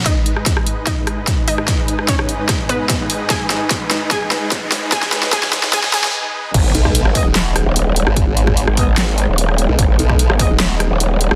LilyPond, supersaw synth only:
\new Staff \with { instrumentName = "Supersaw synth" } { \time 4/4 \key gis \minor \tempo 4 = 148 <gis, gis dis' b' dis''>1~ | <gis, gis dis' b' dis''>1~ | <gis, gis dis' b' dis''>1~ | <gis, gis dis' b' dis''>1 |
<gis b dis'>1~ | <gis b dis'>1~ | <gis b dis'>1 | }